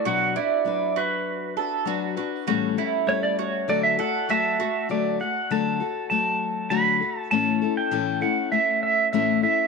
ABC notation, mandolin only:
X:1
M:4/4
L:1/8
Q:1/4=99
K:D
V:1 name="Mandolin"
F E2 F2 A F F | F E2 F2 A F F | z8 | z8 |]